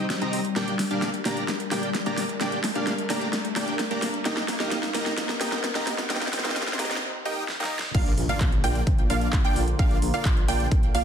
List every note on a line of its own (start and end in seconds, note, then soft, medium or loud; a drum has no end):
0.00 6.98 G3 medium
0.00 0.52 D#4 medium
0.00 0.52 C5 loud
0.00 riser medium
0.10 snare medium
0.10 closed hi-hat medium
0.21 0.40 C4 medium
0.21 0.40 D#4 medium
0.21 0.40 G4 medium
0.21 0.40 D#5 medium
0.21 0.40 A#5 loud
0.21 closed hi-hat soft
0.33 open hi-hat loud
0.45 closed hi-hat soft
0.56 0.74 A#3 medium
0.56 0.74 D4 medium
0.56 4.22 D4 medium
0.56 0.74 G4 medium
0.56 6.06 A#4 loud
0.56 0.74 D5 medium
0.56 0.74 G5 medium
0.56 snare medium
0.56 closed hi-hat medium
0.68 closed hi-hat soft
0.79 snare medium
0.79 open hi-hat loud
0.91 1.09 A#3 medium
0.91 1.09 D4 medium
0.91 1.09 G4 medium
0.91 1.09 D5 medium
0.91 1.09 F5 medium
0.91 closed hi-hat soft
1.02 snare medium
1.02 closed hi-hat medium
1.14 closed hi-hat soft
1.25 1.44 A#3 loud
1.25 1.44 D4 medium
1.25 1.44 G4 medium
1.25 1.44 D5 medium
1.25 1.44 A#5 loud
1.25 snare medium
1.25 open hi-hat loud
1.37 closed hi-hat soft
1.48 snare medium
1.48 closed hi-hat medium
1.60 closed hi-hat soft
1.71 1.90 A#3 medium
1.71 1.90 D4 medium
1.71 1.90 G4 medium
1.71 1.90 D5 medium
1.71 1.90 G5 medium
1.71 snare medium
1.71 open hi-hat loud
1.83 closed hi-hat soft
1.95 snare medium
1.95 closed hi-hat medium
2.06 2.24 A#3 medium
2.06 2.24 D4 medium
2.06 2.24 G4 medium
2.06 2.24 D5 medium
2.06 2.24 A#5 loud
2.06 closed hi-hat soft
2.18 snare medium
2.18 open hi-hat loud
2.29 closed hi-hat soft
2.41 2.59 A#3 medium
2.41 2.59 D4 medium
2.41 2.59 G4 medium
2.41 2.59 D5 medium
2.41 2.59 G5 loud
2.41 snare medium
2.41 closed hi-hat medium
2.52 closed hi-hat soft
2.64 snare medium
2.64 open hi-hat loud
2.75 2.94 A#3 medium
2.75 2.94 D4 medium
2.75 2.94 G4 medium
2.75 2.94 D5 medium
2.75 2.94 F5 loud
2.75 closed hi-hat soft
2.87 snare medium
2.87 closed hi-hat medium
2.98 closed hi-hat soft
3.10 3.28 A#3 medium
3.10 3.28 D4 medium
3.10 3.28 G4 medium
3.10 3.28 D5 medium
3.10 3.28 A#5 loud
3.10 snare medium
3.10 open hi-hat loud
3.21 closed hi-hat soft
3.33 snare medium
3.33 closed hi-hat medium
3.45 closed hi-hat soft
3.56 3.74 A#3 medium
3.56 3.74 D4 medium
3.56 3.74 G4 medium
3.56 3.74 D5 medium
3.56 3.74 G5 medium
3.56 snare medium
3.56 open hi-hat loud
3.68 closed hi-hat soft
3.79 snare medium
3.79 closed hi-hat medium
3.91 4.09 A#3 loud
3.91 4.09 D4 medium
3.91 4.09 G4 medium
3.91 4.09 D5 medium
3.91 4.09 A#5 loud
3.91 closed hi-hat soft
4.02 snare medium
4.02 open hi-hat loud
4.14 closed hi-hat soft
4.25 4.44 A#3 medium
4.25 4.44 D#4 medium
4.25 7.00 D#4 medium
4.25 4.44 G4 medium
4.25 4.44 D#5 medium
4.25 4.44 G5 medium
4.25 snare medium
4.25 closed hi-hat medium
4.37 snare medium
4.37 closed hi-hat soft
4.48 snare medium
4.48 open hi-hat loud
4.60 4.78 A#3 medium
4.60 4.78 D#4 medium
4.60 4.78 G4 medium
4.60 4.78 D#5 medium
4.60 4.78 F5 medium
4.60 snare medium
4.60 closed hi-hat soft
4.72 snare loud
4.72 closed hi-hat medium
4.83 snare medium
4.83 closed hi-hat soft
4.95 5.13 A#3 loud
4.95 5.13 D#4 medium
4.95 5.13 G4 medium
4.95 5.13 D#5 medium
4.95 5.13 A#5 loud
4.95 snare medium
4.95 open hi-hat loud
5.06 snare medium
5.06 closed hi-hat soft
5.18 snare loud
5.18 closed hi-hat medium
5.29 snare medium
5.29 closed hi-hat soft
5.41 5.59 A#3 medium
5.41 5.59 D#4 medium
5.41 5.59 G4 medium
5.41 5.59 D#5 medium
5.41 5.59 G5 loud
5.41 snare loud
5.41 open hi-hat loud
5.52 snare medium
5.52 closed hi-hat soft
5.64 snare loud
5.64 closed hi-hat medium
5.75 5.94 A#3 medium
5.75 5.94 D#4 medium
5.75 5.94 G4 medium
5.75 5.94 D#5 medium
5.75 5.94 A#5 loud
5.75 snare medium
5.75 closed hi-hat soft
5.87 snare loud
5.87 open hi-hat loud
5.98 snare medium
5.98 closed hi-hat soft
6.10 6.28 A#3 medium
6.10 6.28 D#4 medium
6.10 6.28 G4 medium
6.10 7.01 C5 medium
6.10 6.28 D#5 medium
6.10 6.28 G5 loud
6.10 snare loud
6.10 closed hi-hat medium
6.16 snare medium
6.21 snare medium
6.21 closed hi-hat soft
6.27 snare medium
6.33 snare loud
6.33 open hi-hat loud
6.39 snare medium
6.45 6.63 A#3 medium
6.45 6.63 D#4 medium
6.45 6.63 G4 medium
6.45 6.63 D#5 medium
6.45 6.63 F5 loud
6.45 snare medium
6.45 closed hi-hat soft
6.50 snare medium
6.56 snare loud
6.56 closed hi-hat medium
6.62 snare medium
6.68 snare medium
6.68 closed hi-hat soft
6.73 snare medium
6.79 6.97 A#3 medium
6.79 6.97 D#4 medium
6.79 6.97 G4 medium
6.79 6.97 D#5 medium
6.79 6.97 A#5 loud
6.79 snare loud
6.79 open hi-hat loud
6.85 snare medium
6.91 snare medium
6.91 closed hi-hat soft
6.97 snare medium
7.25 7.44 A#3 medium
7.25 7.44 D#4 medium
7.25 7.44 G4 medium
7.25 7.44 D#5 medium
7.25 7.44 G5 medium
7.48 snare medium
7.60 7.78 A#3 medium
7.60 7.78 D#4 medium
7.60 7.78 G4 medium
7.60 7.78 D#5 medium
7.60 7.78 A#5 loud
7.60 snare medium
7.79 snare medium
7.95 8.13 A#1 loud
7.95 11.04 D3 medium
7.95 8.13 A#3 medium
7.95 11.04 A#3 medium
7.95 8.13 D4 medium
7.95 8.13 F4 medium
7.95 11.04 F4 medium
7.95 8.13 D5 medium
7.95 8.13 F5 loud
7.95 kick loud
7.95 closed hi-hat medium
7.95 crash loud
7.95 impact medium
8.06 closed hi-hat soft
8.18 8.27 A#1 medium
8.18 open hi-hat loud
8.29 8.47 A#3 medium
8.29 8.47 D4 medium
8.29 8.47 F4 medium
8.29 8.47 D5 medium
8.29 8.47 F5 medium
8.29 8.48 F5 medium
8.29 closed hi-hat soft
8.40 8.59 A#1 loud
8.40 kick loud
8.40 clap loud
8.40 closed hi-hat medium
8.52 closed hi-hat soft
8.64 8.82 A#1 loud
8.64 8.82 A#3 loud
8.64 8.82 D4 medium
8.64 8.82 F4 medium
8.64 8.82 D5 medium
8.64 8.82 G5 loud
8.64 open hi-hat loud
8.75 closed hi-hat soft
8.87 9.05 A#1 medium
8.87 kick loud
8.87 closed hi-hat medium
8.98 closed hi-hat soft
9.10 9.28 A#1 medium
9.10 9.28 A#3 medium
9.10 9.28 D4 medium
9.10 9.28 F4 medium
9.10 9.28 D5 medium
9.10 9.28 F5 medium
9.10 open hi-hat loud
9.21 closed hi-hat soft
9.33 9.42 A#1 medium
9.33 kick loud
9.33 clap loud
9.33 closed hi-hat medium
9.45 9.63 A#3 medium
9.45 9.63 D4 medium
9.45 9.63 F4 medium
9.45 9.63 D5 medium
9.45 9.63 G5 loud
9.45 closed hi-hat soft
9.56 9.74 A#1 medium
9.56 open hi-hat loud
9.68 closed hi-hat soft
9.79 9.97 A#1 loud
9.79 9.97 A#3 medium
9.79 9.97 D4 medium
9.79 9.97 F4 medium
9.79 9.97 D5 medium
9.79 9.97 F5 loud
9.79 9.98 F5 medium
9.79 kick loud
9.79 closed hi-hat medium
9.91 closed hi-hat soft
10.02 10.11 A#1 medium
10.02 open hi-hat loud
10.14 10.32 A#3 medium
10.14 10.32 D4 medium
10.14 10.32 F4 medium
10.14 10.32 D5 medium
10.14 10.32 F5 medium
10.14 closed hi-hat soft
10.25 10.43 A#1 medium
10.25 kick loud
10.25 clap loud
10.25 closed hi-hat medium
10.37 closed hi-hat soft
10.48 10.66 A#1 medium
10.48 10.67 A#3 medium
10.48 10.67 D4 medium
10.48 10.67 F4 medium
10.48 10.67 D5 medium
10.48 10.67 G5 loud
10.48 open hi-hat loud
10.60 closed hi-hat soft
10.71 10.89 A#1 medium
10.71 kick loud
10.71 closed hi-hat medium
10.83 closed hi-hat soft
10.95 11.04 A#1 medium
10.95 11.04 A#3 medium
10.95 11.04 D4 medium
10.95 11.04 F4 medium
10.95 11.04 D5 medium
10.95 11.04 F5 medium
10.95 open hi-hat loud